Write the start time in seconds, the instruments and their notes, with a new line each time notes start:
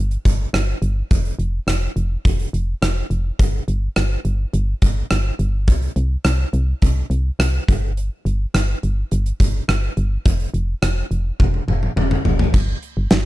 Already playing: fm bass G1
0.11 closed hi-hat
0.25 fm bass G1, kick, closed hi-hat
0.53 fm bass G1, cross-stick, closed hi-hat
0.82 fm bass G1, closed hi-hat
1.11 fm bass F1, kick, closed hi-hat
1.25 closed hi-hat
1.39 fm bass F1, closed hi-hat
1.67 fm bass F1, cross-stick, closed hi-hat
1.96 fm bass F1, closed hi-hat
2.25 fm bass F1, kick, closed hi-hat
2.39 closed hi-hat
2.53 fm bass F1, closed hi-hat
2.82 fm bass F1, cross-stick, closed hi-hat
3.10 fm bass F1, closed hi-hat
3.39 fm bass G1, kick, closed hi-hat
3.68 fm bass G1, closed hi-hat
3.96 fm bass G1, cross-stick, closed hi-hat
4.25 fm bass G1, closed hi-hat
4.53 fm bass G1, closed hi-hat
4.82 fm bass G1, kick, closed hi-hat
5.11 fm bass G1, cross-stick, closed hi-hat
5.39 fm bass G1, closed hi-hat
5.68 fm bass C2, kick, closed hi-hat
5.82 closed hi-hat
5.96 fm bass C2, closed hi-hat
6.24 fm bass C2, cross-stick, closed hi-hat
6.53 fm bass C2, closed hi-hat
6.82 fm bass C2, kick, closed hi-hat
7.10 fm bass C2, closed hi-hat
7.39 fm bass C2, cross-stick, closed hi-hat
7.68 fm bass G1, kick, closed hi-hat
7.97 closed hi-hat
8.25 fm bass G1, closed hi-hat
8.54 fm bass G1, cross-stick, closed hi-hat
8.83 fm bass G1, closed hi-hat
9.11 fm bass G1, closed hi-hat
9.26 closed hi-hat
9.40 fm bass G1, kick, closed hi-hat
9.68 fm bass G1, cross-stick, closed hi-hat
9.97 fm bass G1, closed hi-hat
10.25 fm bass F1, kick, closed hi-hat
10.40 closed hi-hat
10.54 fm bass F1, closed hi-hat
10.82 fm bass F1, cross-stick, closed hi-hat
11.11 fm bass F1, closed hi-hat
11.40 fm bass F1, kick, high tom
11.54 high tom
11.68 fm bass F1, mid tom
11.83 mid tom
11.96 fm bass F1, mid tom
12.11 mid tom
12.25 fm bass F1, floor tom
12.39 floor tom
12.54 fm bass G1, kick, crash
12.82 closed hi-hat
12.97 fm bass G1
13.11 fm bass G1, snare, closed hi-hat